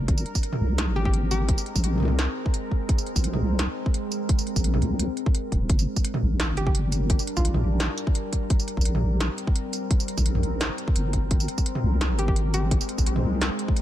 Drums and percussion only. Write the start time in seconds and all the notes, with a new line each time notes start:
0.08 kick, closed hi-hat
0.18 tambourine
0.26 closed hi-hat
0.35 kick, tambourine
0.43 closed hi-hat
0.53 mid tom
0.78 snare, closed hi-hat
1.05 kick
1.14 closed hi-hat
1.31 tambourine
1.49 kick, closed hi-hat
1.58 tambourine
1.66 closed hi-hat
1.76 kick, tambourine
1.84 closed hi-hat
1.93 mid tom
1.95 mid tom
1.98 mid tom
2.00 mid tom
2.03 mid tom
2.05 mid tom
2.08 mid tom
2.19 snare, closed hi-hat
2.46 kick
2.54 closed hi-hat
2.71 kick
2.89 kick, closed hi-hat
2.98 tambourine
3.06 closed hi-hat
3.16 kick, tambourine
3.24 closed hi-hat
3.33 mid tom
3.59 snare, closed hi-hat
3.86 kick
3.94 closed hi-hat
4.12 tambourine
4.29 kick, closed hi-hat
4.39 tambourine
4.47 closed hi-hat
4.56 kick, tambourine
4.64 closed hi-hat
4.74 mid tom
4.82 closed hi-hat, mid tom
4.99 closed hi-hat
5.17 closed hi-hat
5.26 kick
5.35 closed hi-hat
5.52 kick, closed hi-hat
5.70 kick, closed hi-hat
5.79 tambourine
5.96 kick, tambourine
6.05 closed hi-hat
6.14 mid tom
6.40 snare, closed hi-hat
6.57 closed hi-hat
6.67 kick
6.75 closed hi-hat
6.92 closed hi-hat, tambourine
7.10 kick, closed hi-hat
7.19 tambourine
7.27 closed hi-hat
7.37 kick, tambourine
7.45 closed hi-hat
7.54 mid tom
7.80 snare, closed hi-hat
7.98 closed hi-hat
8.07 kick
8.15 closed hi-hat
8.33 kick, closed hi-hat
8.50 kick, closed hi-hat
8.60 tambourine
8.68 closed hi-hat
8.77 kick
8.81 tambourine
8.85 closed hi-hat
8.95 mid tom
9.20 snare, closed hi-hat
9.38 closed hi-hat
9.47 kick
9.56 closed hi-hat
9.73 closed hi-hat, tambourine
9.91 kick, closed hi-hat
10.00 tambourine
10.08 closed hi-hat
10.18 kick, tambourine
10.26 closed hi-hat
10.35 mid tom
10.43 closed hi-hat
10.61 snare, closed hi-hat
10.78 closed hi-hat
10.88 kick
10.96 closed hi-hat
11.13 kick, closed hi-hat
11.31 kick, closed hi-hat
11.40 tambourine
11.48 closed hi-hat
11.58 kick, tambourine
11.66 closed hi-hat
11.75 mid tom
12.01 snare, closed hi-hat
12.19 closed hi-hat
12.28 kick
12.36 closed hi-hat
12.54 closed hi-hat, tambourine
12.71 kick, closed hi-hat
12.81 tambourine
12.89 closed hi-hat
12.98 kick, tambourine
13.06 closed hi-hat
13.16 mid tom
13.41 snare, closed hi-hat
13.59 closed hi-hat
13.68 kick
13.76 closed hi-hat